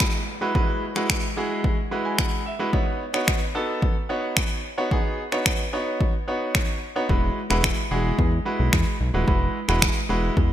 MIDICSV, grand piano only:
0, 0, Header, 1, 2, 480
1, 0, Start_track
1, 0, Key_signature, 4, "major"
1, 0, Tempo, 545455
1, 485, Time_signature, 4, 2, 24, 8
1, 9265, End_track
2, 0, Start_track
2, 0, Title_t, "Grand piano"
2, 0, Program_c, 0, 0
2, 0, Note_on_c, 0, 56, 79
2, 0, Note_on_c, 0, 64, 70
2, 0, Note_on_c, 0, 66, 73
2, 0, Note_on_c, 0, 71, 87
2, 189, Note_off_c, 0, 56, 0
2, 189, Note_off_c, 0, 64, 0
2, 190, Note_off_c, 0, 66, 0
2, 191, Note_off_c, 0, 71, 0
2, 361, Note_on_c, 0, 56, 81
2, 363, Note_on_c, 0, 64, 70
2, 364, Note_on_c, 0, 66, 72
2, 365, Note_on_c, 0, 71, 88
2, 448, Note_off_c, 0, 56, 0
2, 449, Note_off_c, 0, 64, 0
2, 449, Note_off_c, 0, 66, 0
2, 450, Note_off_c, 0, 71, 0
2, 482, Note_on_c, 0, 56, 79
2, 483, Note_on_c, 0, 64, 74
2, 485, Note_on_c, 0, 66, 72
2, 486, Note_on_c, 0, 71, 93
2, 738, Note_off_c, 0, 56, 0
2, 739, Note_off_c, 0, 64, 0
2, 740, Note_off_c, 0, 66, 0
2, 740, Note_off_c, 0, 71, 0
2, 842, Note_on_c, 0, 56, 81
2, 844, Note_on_c, 0, 64, 74
2, 846, Note_on_c, 0, 66, 72
2, 847, Note_on_c, 0, 71, 88
2, 1098, Note_off_c, 0, 56, 0
2, 1099, Note_off_c, 0, 64, 0
2, 1100, Note_off_c, 0, 66, 0
2, 1101, Note_off_c, 0, 71, 0
2, 1203, Note_on_c, 0, 56, 86
2, 1205, Note_on_c, 0, 64, 78
2, 1206, Note_on_c, 0, 66, 80
2, 1209, Note_on_c, 0, 68, 90
2, 1544, Note_off_c, 0, 56, 0
2, 1545, Note_off_c, 0, 64, 0
2, 1545, Note_off_c, 0, 66, 0
2, 1547, Note_off_c, 0, 68, 0
2, 1683, Note_on_c, 0, 56, 80
2, 1684, Note_on_c, 0, 64, 74
2, 1685, Note_on_c, 0, 83, 67
2, 1686, Note_on_c, 0, 66, 74
2, 1688, Note_on_c, 0, 71, 92
2, 1797, Note_off_c, 0, 83, 0
2, 1804, Note_on_c, 0, 80, 67
2, 1916, Note_off_c, 0, 80, 0
2, 1926, Note_on_c, 0, 78, 73
2, 2109, Note_off_c, 0, 56, 0
2, 2109, Note_off_c, 0, 64, 0
2, 2110, Note_off_c, 0, 66, 0
2, 2111, Note_off_c, 0, 71, 0
2, 2149, Note_off_c, 0, 78, 0
2, 2165, Note_on_c, 0, 76, 68
2, 2282, Note_on_c, 0, 56, 80
2, 2283, Note_on_c, 0, 64, 75
2, 2285, Note_on_c, 0, 66, 71
2, 2286, Note_on_c, 0, 71, 90
2, 2368, Note_off_c, 0, 56, 0
2, 2369, Note_off_c, 0, 64, 0
2, 2370, Note_off_c, 0, 66, 0
2, 2370, Note_off_c, 0, 71, 0
2, 2388, Note_off_c, 0, 76, 0
2, 2402, Note_on_c, 0, 59, 84
2, 2403, Note_on_c, 0, 63, 76
2, 2405, Note_on_c, 0, 66, 75
2, 2406, Note_on_c, 0, 73, 87
2, 2658, Note_off_c, 0, 59, 0
2, 2658, Note_off_c, 0, 63, 0
2, 2659, Note_off_c, 0, 66, 0
2, 2660, Note_off_c, 0, 73, 0
2, 2761, Note_on_c, 0, 59, 81
2, 2762, Note_on_c, 0, 63, 70
2, 2765, Note_on_c, 0, 66, 74
2, 2766, Note_on_c, 0, 73, 89
2, 3018, Note_off_c, 0, 59, 0
2, 3018, Note_off_c, 0, 63, 0
2, 3020, Note_off_c, 0, 66, 0
2, 3020, Note_off_c, 0, 73, 0
2, 3121, Note_on_c, 0, 59, 82
2, 3123, Note_on_c, 0, 63, 77
2, 3123, Note_on_c, 0, 66, 77
2, 3125, Note_on_c, 0, 69, 93
2, 3463, Note_off_c, 0, 59, 0
2, 3464, Note_off_c, 0, 63, 0
2, 3464, Note_off_c, 0, 66, 0
2, 3465, Note_off_c, 0, 69, 0
2, 3601, Note_on_c, 0, 59, 84
2, 3603, Note_on_c, 0, 63, 74
2, 3604, Note_on_c, 0, 66, 75
2, 3606, Note_on_c, 0, 73, 86
2, 4028, Note_off_c, 0, 59, 0
2, 4029, Note_off_c, 0, 63, 0
2, 4029, Note_off_c, 0, 66, 0
2, 4030, Note_off_c, 0, 73, 0
2, 4202, Note_on_c, 0, 59, 83
2, 4204, Note_on_c, 0, 63, 72
2, 4206, Note_on_c, 0, 66, 74
2, 4206, Note_on_c, 0, 73, 85
2, 4288, Note_off_c, 0, 59, 0
2, 4289, Note_off_c, 0, 63, 0
2, 4290, Note_off_c, 0, 66, 0
2, 4290, Note_off_c, 0, 73, 0
2, 4323, Note_on_c, 0, 59, 80
2, 4324, Note_on_c, 0, 63, 74
2, 4326, Note_on_c, 0, 66, 76
2, 4327, Note_on_c, 0, 68, 92
2, 4578, Note_off_c, 0, 59, 0
2, 4579, Note_off_c, 0, 63, 0
2, 4580, Note_off_c, 0, 66, 0
2, 4581, Note_off_c, 0, 68, 0
2, 4681, Note_on_c, 0, 59, 79
2, 4683, Note_on_c, 0, 63, 71
2, 4685, Note_on_c, 0, 66, 72
2, 4686, Note_on_c, 0, 73, 88
2, 4938, Note_off_c, 0, 59, 0
2, 4939, Note_off_c, 0, 63, 0
2, 4940, Note_off_c, 0, 66, 0
2, 4940, Note_off_c, 0, 73, 0
2, 5043, Note_on_c, 0, 59, 83
2, 5044, Note_on_c, 0, 63, 78
2, 5045, Note_on_c, 0, 66, 74
2, 5047, Note_on_c, 0, 73, 91
2, 5383, Note_off_c, 0, 59, 0
2, 5384, Note_off_c, 0, 63, 0
2, 5385, Note_off_c, 0, 66, 0
2, 5386, Note_off_c, 0, 73, 0
2, 5522, Note_on_c, 0, 59, 79
2, 5523, Note_on_c, 0, 63, 75
2, 5525, Note_on_c, 0, 66, 72
2, 5526, Note_on_c, 0, 73, 90
2, 5948, Note_off_c, 0, 59, 0
2, 5949, Note_off_c, 0, 63, 0
2, 5950, Note_off_c, 0, 66, 0
2, 5950, Note_off_c, 0, 73, 0
2, 6122, Note_on_c, 0, 59, 80
2, 6123, Note_on_c, 0, 63, 73
2, 6125, Note_on_c, 0, 66, 71
2, 6126, Note_on_c, 0, 73, 88
2, 6208, Note_off_c, 0, 59, 0
2, 6209, Note_off_c, 0, 63, 0
2, 6210, Note_off_c, 0, 66, 0
2, 6210, Note_off_c, 0, 73, 0
2, 6240, Note_on_c, 0, 56, 80
2, 6242, Note_on_c, 0, 64, 74
2, 6244, Note_on_c, 0, 66, 71
2, 6246, Note_on_c, 0, 71, 90
2, 6497, Note_off_c, 0, 56, 0
2, 6498, Note_off_c, 0, 64, 0
2, 6499, Note_off_c, 0, 66, 0
2, 6500, Note_off_c, 0, 71, 0
2, 6599, Note_on_c, 0, 56, 82
2, 6601, Note_on_c, 0, 64, 73
2, 6603, Note_on_c, 0, 66, 73
2, 6604, Note_on_c, 0, 71, 87
2, 6857, Note_off_c, 0, 56, 0
2, 6858, Note_off_c, 0, 64, 0
2, 6859, Note_off_c, 0, 66, 0
2, 6859, Note_off_c, 0, 71, 0
2, 6960, Note_on_c, 0, 56, 82
2, 6963, Note_on_c, 0, 64, 73
2, 6963, Note_on_c, 0, 66, 78
2, 6965, Note_on_c, 0, 68, 90
2, 7302, Note_off_c, 0, 56, 0
2, 7304, Note_off_c, 0, 64, 0
2, 7304, Note_off_c, 0, 66, 0
2, 7305, Note_off_c, 0, 68, 0
2, 7439, Note_on_c, 0, 56, 77
2, 7441, Note_on_c, 0, 64, 75
2, 7442, Note_on_c, 0, 66, 74
2, 7444, Note_on_c, 0, 71, 90
2, 7867, Note_off_c, 0, 56, 0
2, 7868, Note_off_c, 0, 64, 0
2, 7868, Note_off_c, 0, 66, 0
2, 7869, Note_off_c, 0, 71, 0
2, 8042, Note_on_c, 0, 56, 78
2, 8044, Note_on_c, 0, 64, 71
2, 8045, Note_on_c, 0, 66, 69
2, 8047, Note_on_c, 0, 71, 85
2, 8128, Note_off_c, 0, 56, 0
2, 8129, Note_off_c, 0, 64, 0
2, 8130, Note_off_c, 0, 66, 0
2, 8131, Note_off_c, 0, 71, 0
2, 8160, Note_on_c, 0, 56, 78
2, 8162, Note_on_c, 0, 64, 74
2, 8163, Note_on_c, 0, 66, 73
2, 8165, Note_on_c, 0, 71, 86
2, 8417, Note_off_c, 0, 56, 0
2, 8418, Note_off_c, 0, 64, 0
2, 8419, Note_off_c, 0, 66, 0
2, 8419, Note_off_c, 0, 71, 0
2, 8522, Note_on_c, 0, 56, 84
2, 8523, Note_on_c, 0, 64, 70
2, 8525, Note_on_c, 0, 66, 75
2, 8526, Note_on_c, 0, 71, 90
2, 8778, Note_off_c, 0, 56, 0
2, 8779, Note_off_c, 0, 64, 0
2, 8780, Note_off_c, 0, 66, 0
2, 8780, Note_off_c, 0, 71, 0
2, 8880, Note_on_c, 0, 56, 87
2, 8882, Note_on_c, 0, 64, 78
2, 8885, Note_on_c, 0, 66, 79
2, 8886, Note_on_c, 0, 71, 94
2, 9222, Note_off_c, 0, 56, 0
2, 9223, Note_off_c, 0, 64, 0
2, 9225, Note_off_c, 0, 66, 0
2, 9225, Note_off_c, 0, 71, 0
2, 9265, End_track
0, 0, End_of_file